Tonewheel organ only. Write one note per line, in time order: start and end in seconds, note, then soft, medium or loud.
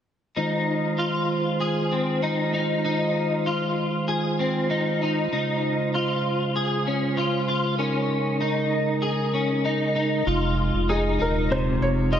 0.36 5.28 D#3 medium
0.36 5.28 G#3 medium
0.36 7.75 F4 soft
0.36 7.75 C5 medium
5.32 10.23 C#3 medium
5.32 10.23 G#3 soft
7.78 10.24 D#4 soft
7.78 10.24 A#4 medium
10.26 12.20 C3 medium
10.26 12.20 G#3 medium
10.26 12.20 D#4 medium
10.26 12.20 F4 medium